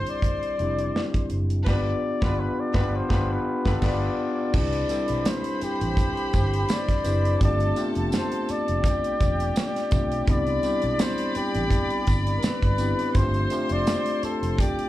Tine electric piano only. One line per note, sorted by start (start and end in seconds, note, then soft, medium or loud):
0.00 0.13 G3 medium
0.00 0.13 C4 medium
0.00 0.14 D4 medium
0.00 0.14 E4 medium
0.00 0.14 G4 medium
0.58 1.59 G3 medium
0.58 1.60 C4 medium
0.58 1.60 D4 medium
0.58 1.60 E4 medium
0.58 1.61 G4 medium
1.66 1.91 B3 loud
1.66 1.92 D4 medium
1.66 1.92 F4 medium
1.66 1.93 G4 loud
2.22 2.46 B3 medium
2.22 2.46 D4 medium
2.22 2.47 F4 loud
2.22 2.47 G4 medium
2.74 2.99 B3 loud
2.74 3.00 D4 loud
2.74 3.00 F4 loud
2.74 3.00 G4 loud
3.09 3.34 B3 loud
3.09 3.35 D4 loud
3.09 3.36 F4 loud
3.09 3.36 G4 loud
3.65 3.80 B3 medium
3.65 3.80 D4 medium
3.65 3.80 F4 medium
3.65 3.81 G4 medium
3.82 4.07 B3 loud
3.82 4.07 D4 loud
3.82 4.08 F4 loud
3.82 4.08 G4 loud
4.53 4.87 C4 medium
4.53 4.88 D4 medium
4.53 4.88 E4 medium
4.53 4.88 G4 medium
4.53 4.87 B4 medium
4.89 6.23 G3 medium
4.89 6.23 C4 medium
4.89 6.24 D4 medium
4.89 6.24 E4 medium
4.89 6.24 A4 medium
7.04 7.38 C4 medium
7.04 7.39 D4 medium
7.04 7.39 E4 medium
7.04 7.39 G4 medium
7.04 7.38 B4 medium
7.40 7.74 A3 medium
7.40 7.74 C4 medium
7.40 7.74 D4 medium
7.40 7.75 F4 medium
7.40 7.75 G4 medium
7.75 9.10 A3 medium
7.75 7.83 B3 medium
7.75 9.11 D4 medium
7.75 9.11 F4 medium
7.75 9.11 G4 medium
7.82 9.13 C4 medium
9.90 10.25 A3 medium
9.90 10.25 C4 medium
9.90 10.25 D4 medium
9.90 10.26 F4 medium
9.90 10.26 G4 medium
10.27 10.61 B3 medium
10.27 10.61 C4 medium
10.27 10.61 D4 medium
10.27 10.62 E4 medium
10.27 10.62 G4 medium
10.63 11.97 G3 medium
10.63 11.97 C4 medium
10.63 11.98 D4 medium
10.63 11.98 E4 medium
10.63 11.99 G4 medium
12.78 13.12 B3 medium
12.78 13.12 C4 medium
12.78 13.13 D4 medium
12.78 13.13 E4 medium
12.78 13.13 G4 medium
13.15 13.49 A3 medium
13.15 13.49 C4 medium
13.15 13.49 D4 medium
13.15 13.49 F4 medium
13.15 13.50 G4 medium
13.50 14.85 A3 medium
13.50 14.86 C4 medium
13.50 14.86 D4 medium
13.50 14.86 F4 medium
13.50 14.86 G4 medium